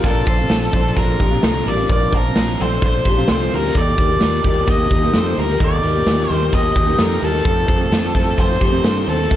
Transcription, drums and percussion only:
0.04 kick loud
0.04 closed hi-hat medium
0.26 kick loud
0.26 closed hi-hat medium
0.49 snare medium
0.49 closed hi-hat medium
0.73 kick medium
0.73 closed hi-hat medium
0.96 kick medium
0.96 closed hi-hat loud
1.20 kick medium
1.20 closed hi-hat medium
1.43 snare loud
1.43 closed hi-hat medium
1.67 open hi-hat medium
1.89 kick loud
1.89 closed hi-hat medium
2.12 kick medium
2.12 closed hi-hat medium
2.35 snare loud
2.35 closed hi-hat medium
2.59 closed hi-hat medium
2.82 kick medium
2.82 closed hi-hat medium
3.05 kick medium
3.05 closed hi-hat medium
3.28 snare loud
3.28 closed hi-hat medium
3.52 open hi-hat medium
3.75 kick loud
3.75 closed hi-hat medium
3.98 kick medium
3.98 closed hi-hat medium
4.20 snare medium
4.20 closed hi-hat medium
4.44 kick medium
4.44 closed hi-hat medium
4.67 kick loud
4.67 closed hi-hat medium
4.91 kick medium
4.91 closed hi-hat medium
5.14 snare loud
5.14 closed hi-hat medium
5.37 open hi-hat medium
5.60 kick loud
5.60 closed hi-hat medium
5.83 closed hi-hat medium
6.06 snare loud
6.06 closed hi-hat medium
6.30 closed hi-hat medium
6.53 kick medium
6.53 closed hi-hat medium
6.76 kick medium
6.76 closed hi-hat medium
6.99 snare loud
6.99 closed hi-hat medium
7.22 open hi-hat medium
7.45 kick loud
7.45 closed hi-hat medium
7.68 kick medium
7.68 closed hi-hat medium
7.92 snare loud
7.92 closed hi-hat medium
8.15 kick medium
8.15 closed hi-hat medium
8.38 kick medium
8.38 closed hi-hat medium
8.61 kick medium
8.61 closed hi-hat medium
8.84 snare loud
8.84 closed hi-hat medium
9.08 open hi-hat medium
9.31 kick loud
9.31 closed hi-hat medium

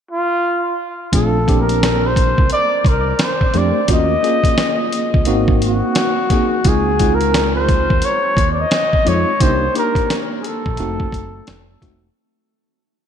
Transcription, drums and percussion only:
1.13 kick medium
1.13 closed hi-hat loud
1.48 kick medium
1.48 closed hi-hat medium
1.69 closed hi-hat medium
1.83 snare loud
1.83 closed hi-hat medium
2.16 kick medium
2.16 closed hi-hat medium
2.38 kick loud
2.50 closed hi-hat medium
2.85 kick medium
2.85 closed hi-hat medium
3.19 snare loud
3.19 closed hi-hat medium
3.41 kick medium
3.54 closed hi-hat medium
3.88 kick loud
3.88 closed hi-hat loud
4.24 closed hi-hat medium
4.44 kick medium
4.44 closed hi-hat medium
4.58 snare loud
4.58 closed hi-hat medium
4.93 closed hi-hat medium
5.14 kick medium
5.25 closed hi-hat medium
5.48 kick loud
5.62 closed hi-hat medium
5.95 snare loud
5.95 closed hi-hat medium
6.30 kick medium
6.30 snare soft
6.30 closed hi-hat medium
6.64 kick loud
6.64 closed hi-hat loud
6.99 kick medium
6.99 closed hi-hat medium
7.21 closed hi-hat medium
7.34 snare loud
7.34 closed hi-hat medium
7.69 kick medium
7.69 closed hi-hat medium
7.90 kick medium
8.02 closed hi-hat medium
8.37 kick medium
8.37 closed hi-hat medium
8.71 snare loud
8.71 closed hi-hat medium
8.93 kick medium
9.07 closed hi-hat medium
9.40 kick medium
9.40 closed hi-hat loud
9.75 closed hi-hat medium
9.95 kick medium
9.95 closed hi-hat medium
10.10 snare loud
10.10 closed hi-hat medium
10.44 closed hi-hat medium
10.66 kick loud
10.77 closed hi-hat medium
11.00 kick loud
11.12 kick medium
11.12 closed hi-hat medium
11.47 snare loud
11.47 closed hi-hat medium
11.82 kick medium
11.82 snare soft
11.82 closed hi-hat medium

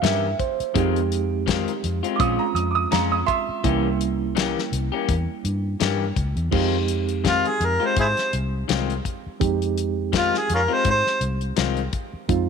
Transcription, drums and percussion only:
0.04 snare loud
0.04 closed hi-hat medium
0.39 kick medium
0.39 closed hi-hat medium
0.60 closed hi-hat soft
0.76 kick loud
0.76 closed hi-hat medium
0.96 closed hi-hat soft
1.12 closed hi-hat medium
1.48 kick medium
1.48 snare loud
1.48 closed hi-hat medium
1.68 closed hi-hat soft
1.84 closed hi-hat medium
2.04 closed hi-hat soft
2.20 kick loud
2.20 closed hi-hat medium
2.56 closed hi-hat medium
2.92 snare loud
2.92 closed hi-hat medium
3.28 kick medium
3.28 closed hi-hat medium
3.64 kick loud
3.64 closed hi-hat medium
4.01 closed hi-hat medium
4.37 snare loud
4.37 closed hi-hat medium
4.59 snare soft
4.73 closed hi-hat medium
5.09 kick loud
5.09 closed hi-hat medium
5.45 closed hi-hat medium
5.80 snare loud
5.80 closed hi-hat medium
6.16 kick medium
6.16 closed hi-hat medium
6.37 closed hi-hat soft
6.52 kick loud
6.52 crash loud
6.88 closed hi-hat medium
7.09 closed hi-hat soft
7.25 kick medium
7.25 snare loud
7.25 closed hi-hat medium
7.45 closed hi-hat soft
7.61 closed hi-hat medium
7.97 kick loud
7.97 closed hi-hat medium
8.17 snare soft
8.17 closed hi-hat soft
8.33 closed hi-hat medium
8.69 snare loud
8.69 closed hi-hat medium
8.90 closed hi-hat soft
9.05 kick medium
9.05 closed hi-hat medium
9.41 kick loud
9.41 closed hi-hat medium
9.62 closed hi-hat soft
9.78 closed hi-hat medium
10.13 kick medium
10.13 snare loud
10.13 closed hi-hat medium
10.34 snare soft
10.50 closed hi-hat medium
10.85 kick loud
10.85 closed hi-hat medium
11.07 snare soft
11.21 closed hi-hat medium
11.41 closed hi-hat soft
11.57 snare loud
11.57 closed hi-hat medium
11.77 closed hi-hat soft
11.93 kick medium
11.93 closed hi-hat medium
12.29 kick loud
12.29 closed hi-hat medium

